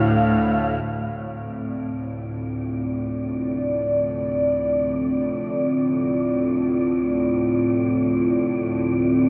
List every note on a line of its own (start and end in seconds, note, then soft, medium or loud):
0.00 0.83 D2 medium
0.00 0.83 A2 medium
0.00 0.86 F5 medium
0.82 9.29 D2 medium
0.82 9.29 A2 medium
0.82 9.29 C4 medium
0.82 9.29 D5 medium
1.88 9.29 F4 medium
2.37 9.29 D5 medium